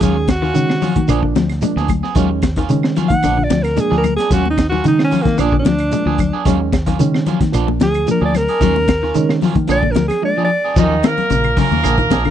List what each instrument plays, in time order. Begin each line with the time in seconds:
Already playing: alto saxophone G#4
0.00 fingered electric bass D#2, reed electric piano D#3 G#3 C#4, clean electric guitar F#3 A#3 C#4 F4, kick, closed hi-hat, shekere
0.17 muted clean electric guitar stroke
0.28 alto saxophone F#4, muted clean electric guitar stroke, kick, snare, closed hi-hat, high conga, claves, shekere
0.42 clean electric guitar D#3 A#3 C#4 F4, snare
0.54 clean electric guitar C#3, reed electric piano D#3 G#3 C#4, fingered electric bass D#3, closed hi-hat, shekere
0.70 snare, claves
0.82 clean electric guitar F3 F#3 C#4 F4, muted clean electric guitar stroke, snare, open hi-hat, low conga, shekere
0.96 fingered electric bass D#3, muted clean electric guitar stroke, kick, closed hi-hat, high conga
1.08 fingered electric bass A#1, clean electric guitar D3 F3 B3 D4 G#4, reed electric piano F3 A#3 D4, closed hi-hat, claves, shekere
1.22 clean electric guitar D3, muted clean electric guitar stroke, kick
1.35 fingered electric bass D2, clean electric guitar F3, muted clean electric guitar stroke, snare, closed hi-hat, high conga, shekere
1.49 snare, closed hi-hat, claves
1.61 reed electric piano F3 A#3 D4, clean electric guitar G#3, muted clean electric guitar stroke, closed hi-hat, high conga, shekere
1.76 fingered electric bass D2, clean electric guitar B3 D4 G#4, muted clean electric guitar stroke, snare
1.88 muted clean electric guitar stroke, kick, closed hi-hat, high conga, low conga, claves, shekere
2.03 clean electric guitar B3 G#4, muted clean electric guitar stroke, snare
2.15 fingered electric bass D#2, reed electric piano D#3 G#3 C#4, clean electric guitar F#3 A#3 C#4 F4, kick, closed hi-hat, shekere
2.30 muted clean electric guitar stroke
2.42 muted clean electric guitar stroke, kick, snare, closed hi-hat, high conga, claves, shekere
2.56 clean electric guitar D#3 A#3 C#4 F4, kick, snare, closed hi-hat
2.69 clean electric guitar C#3, reed electric piano D#3 G#3 C#4, fingered electric bass D#3, muted clean electric guitar stroke, closed hi-hat, shekere
2.83 snare, claves
2.96 clean electric guitar F3 F#3 A#3 C#4 F4, snare, closed hi-hat, low conga, shekere
3.08 fingered electric bass D#3, alto saxophone F#5, muted clean electric guitar stroke, kick, closed hi-hat, high conga
3.23 fingered electric bass A#1, clean electric guitar D3 F3 B3 D4, reed electric piano F3 A#3 D4, muted clean electric guitar stroke, closed hi-hat, claves, shekere
3.38 clean electric guitar D3, muted clean electric guitar stroke
3.44 alto saxophone D5
3.50 fingered electric bass D2, clean electric guitar F3, muted clean electric guitar stroke, snare, closed hi-hat, high conga, shekere
3.63 alto saxophone A#4, snare, closed hi-hat, claves
3.76 reed electric piano F3 A#3 D4, clean electric guitar G#3, muted clean electric guitar stroke, closed hi-hat, high conga, shekere
3.80 alto saxophone G#4
3.91 fingered electric bass D2, clean electric guitar F3 B3 D4 G#4, snare
3.98 alto saxophone A#4
4.04 muted clean electric guitar stroke, closed hi-hat, high conga, low conga, claves, shekere
4.16 clean electric guitar D4 G#4, alto saxophone G#4, snare, closed hi-hat
4.21 clean electric guitar B3
4.30 fingered electric bass D#2, reed electric piano D#3 G#3 C#4, clean electric guitar F#3 C#4 F4, alto saxophone F#4, muted clean electric guitar stroke, kick, snare, closed hi-hat, shekere
4.46 muted clean electric guitar stroke, high conga
4.50 alto saxophone D#4
4.58 muted clean electric guitar stroke, kick, snare, closed hi-hat, high conga, claves, shekere
4.69 clean electric guitar D#3 C#4 F4, alto saxophone F#4, snare, low conga
4.73 clean electric guitar A#3
4.84 clean electric guitar C#3, reed electric piano D#3 G#3 D#4, fingered electric bass D#3, alto saxophone D#4, muted clean electric guitar stroke, closed hi-hat, shekere
4.99 snare, claves
5.04 alto saxophone C#4
5.11 clean electric guitar F3 F#3 A#3 C#4 F4, open hi-hat, low conga, shekere
5.23 fingered electric bass D#3, alto saxophone A#3, muted clean electric guitar stroke, kick, snare, closed hi-hat, high conga
5.38 fingered electric bass A#1, clean electric guitar D3 F3 B3 D4 G#4, reed electric piano F3 A#3 D4, alto saxophone D4, closed hi-hat, claves, shekere
5.52 clean electric guitar D3, muted clean electric guitar stroke, kick
5.59 alto saxophone D4
5.65 fingered electric bass D2, clean electric guitar F3, muted clean electric guitar stroke, snare, closed hi-hat, high conga, shekere
5.78 closed hi-hat, claves
5.91 reed electric piano F3 A#3 D4, clean electric guitar G#3, muted clean electric guitar stroke, closed hi-hat, high conga, shekere
6.06 fingered electric bass D2, clean electric guitar F3 B3 D4 G#4
6.18 muted clean electric guitar stroke, kick, closed hi-hat, low conga, claves, shekere
6.33 clean electric guitar B3 D4 G#4
6.45 fingered electric bass D#2, reed electric piano D#3 G#3 C#4, clean electric guitar F#3 A#3 C#4 F4, kick, closed hi-hat, shekere
6.59 muted clean electric guitar stroke
6.72 muted clean electric guitar stroke, kick, snare, closed hi-hat, high conga, claves, shekere
6.86 clean electric guitar D#3 A#3 C#4 F4, kick, snare, closed hi-hat, low conga
6.99 clean electric guitar C#3, reed electric piano D#3 G#3 C#4, fingered electric bass D#3, muted clean electric guitar stroke, closed hi-hat, shekere
7.14 snare, claves
7.26 clean electric guitar F3 F#3 A#3 C#4 F4, closed hi-hat, low conga, shekere
7.41 fingered electric bass D#3, muted clean electric guitar stroke, kick, snare, closed hi-hat, high conga
7.52 fingered electric bass A#1, reed electric piano F3 A#3 D4, clean electric guitar F3 B3 D4, muted clean electric guitar stroke, closed hi-hat, claves, shekere
7.68 muted clean electric guitar stroke, high conga
7.80 fingered electric bass D2, clean electric guitar F3, alto saxophone G#4, muted clean electric guitar stroke, snare, closed hi-hat, high conga, shekere
7.94 closed hi-hat, claves
8.06 reed electric piano F3 A#3 D4, clean electric guitar F3, muted clean electric guitar stroke, closed hi-hat, high conga, shekere
8.11 alto saxophone A#4
8.21 fingered electric bass D2, clean electric guitar F3 B3 D4 G#4, alto saxophone D5
8.35 alto saxophone A#4, muted clean electric guitar stroke, snare, closed hi-hat, low conga, claves, shekere
8.48 clean electric guitar B3 D4 G#4, closed hi-hat
8.60 fingered electric bass D#2, reed electric piano D#3 G#3 C#4, clean electric guitar F#3 A#3 C#4 F4, kick, closed hi-hat, shekere
8.76 muted clean electric guitar stroke, high conga
8.88 muted clean electric guitar stroke, kick, snare, closed hi-hat, high conga, claves, shekere
9.03 clean electric guitar D#3 C#4 F4, snare
9.14 clean electric guitar C#3, reed electric piano D#3 G#3 C#4, fingered electric bass D#3, muted clean electric guitar stroke, closed hi-hat, shekere
9.29 snare, claves
9.41 clean electric guitar F3 F#3 A#3 C#4 F4, snare, open hi-hat, low conga, shekere
9.55 fingered electric bass D#3, muted clean electric guitar stroke, kick, closed hi-hat, high conga
9.68 fingered electric bass A#1, clean electric guitar D3 B3 D4 G#4, reed electric piano F3 A#3 D4, alto saxophone D5, muted clean electric guitar stroke, closed hi-hat, claves, shekere
9.83 clean electric guitar D3, muted clean electric guitar stroke, kick, high conga
9.91 alto saxophone A#4, closed hi-hat
9.96 fingered electric bass D2, clean electric guitar F3, muted clean electric guitar stroke, snare, high conga, shekere
10.08 alto saxophone G#4, snare, closed hi-hat, claves
10.22 reed electric piano F3 A#3 D4, clean electric guitar G#3, alto saxophone D5, muted clean electric guitar stroke
10.37 clean electric guitar F3 B3 D4 G#4
10.44 alto saxophone D5
10.50 muted clean electric guitar stroke
10.64 clean electric guitar B3 D4 G#4
10.76 fingered electric bass D#2, clean electric guitar F3 F#3 A#3 C#4 F4, horn section D#4, kick, crash, shekere
10.81 trombone D#3
11.03 clean electric guitar D#3, horn section A#4, muted clean electric guitar stroke, snare, closed hi-hat, high conga, claves, shekere
11.08 trombone A#3
11.18 muted clean electric guitar stroke, snare, closed hi-hat, low conga
11.30 fingered electric bass A#1, clean electric guitar C#3, muted clean electric guitar stroke, snare, closed hi-hat, shekere
11.44 muted clean electric guitar stroke, closed hi-hat, claves
11.57 clean electric guitar C#3 F#3 A#3 C#4 F4, trombone A#3, horn section A#4, kick, open hi-hat, low conga, shekere
11.71 fingered electric bass D#2, clean electric guitar A#3 C#4 F4, high conga
11.83 fingered electric bass A#1, clean electric guitar D3 F3 B3 D4 G#4, closed hi-hat, claves, shekere
11.98 clean electric guitar D#3, muted clean electric guitar stroke, kick, closed hi-hat
12.10 fingered electric bass A#1, clean electric guitar F3 B3 D4 G#4, kick, snare, closed hi-hat, high conga, shekere
12.25 clean electric guitar D3, muted clean electric guitar stroke, snare, closed hi-hat, claves